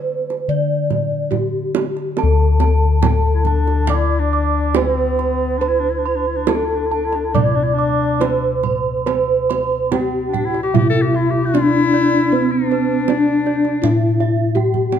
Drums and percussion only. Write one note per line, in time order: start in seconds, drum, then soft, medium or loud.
0.30 kendang slap soft
0.90 kendang slap soft
0.90 kendang low soft
1.32 kendang low medium
1.75 kendang slap soft
1.75 kendang high medium
1.96 kendang slap soft
2.17 kendang high medium
2.60 kendang high medium
3.03 kendang high medium
3.03 kendang low medium
3.45 kendang low medium
3.67 kendang slap soft
3.87 kendang low medium
4.75 kendang high medium
5.19 kendang slap soft
6.47 kendang high medium
7.12 kendang slap soft
7.35 kendang low medium
8.21 kendang high medium
8.63 kendang slap soft
8.63 kendang low soft
9.07 kendang high medium
9.50 kendang high soft
9.92 kendang high medium
9.92 kendang low medium
10.34 kendang low soft
10.54 kendang slap soft
10.75 kendang low medium
11.55 kendang high medium
11.94 kendang slap soft
12.71 kendang slap soft
13.08 kendang slap soft
13.08 kendang high medium
13.46 kendang slap soft
13.65 kendang slap soft
13.84 kendang low medium
14.20 kendang slap soft
14.56 kendang low soft
14.74 kendang low soft
14.92 kendang high soft